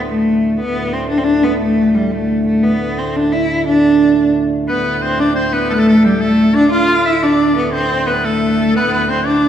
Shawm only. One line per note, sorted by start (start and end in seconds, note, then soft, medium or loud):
4.69 5.04 B4 medium
5.02 5.19 C5 medium
5.20 5.35 D5 medium
5.36 5.55 C5 medium
5.53 5.70 B4 medium
5.70 5.75 A4 medium
5.70 5.81 B4 medium
5.79 5.87 A4 medium
5.88 6.03 A4 medium
6.05 6.23 G4 medium
6.21 6.57 A4 medium
6.56 6.72 D5 medium
6.72 7.04 F5 loud
7.07 7.22 E5 medium
7.23 7.63 D5 medium
7.66 7.75 D5 medium
7.74 8.08 C5 medium
8.07 8.26 B4 medium
8.25 8.75 A4 medium
8.76 8.91 B4 medium
8.93 9.11 B4 medium
9.10 9.29 C5 medium
9.27 9.48 D5 medium